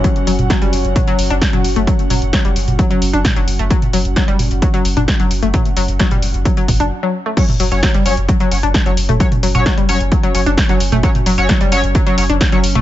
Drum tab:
CC |----------------|----------------|----------------|----------------|
HH |xxoxxxoxxxoxxxox|xxoxxxoxxxoxxxox|xxoxxxoxxxoxxxox|xxoxxxoxxxox----|
SD |----o-------o---|----o-------o---|----o-------o---|----o-----------|
T2 |---o----o----o--|--o----o----o---|-o----o----o----|o----o----o-----|
BD |o---o---o---o---|o---o---o---o---|o---o---o---o---|o---o---o-o-----|

CC |x---------------|----------------|----------------|
HH |xxoxxxoxxxoxxxox|xxoxxxoxxxoxxxox|xxoxxxoxxxoxxxox|
SD |----o-------o---|----o-------o---|----o-------o---|
T2 |-o-------------o|-o-o-----------o|-o-------------o|
BD |o---o---o---o---|o---o---o---o---|o---o---o---o---|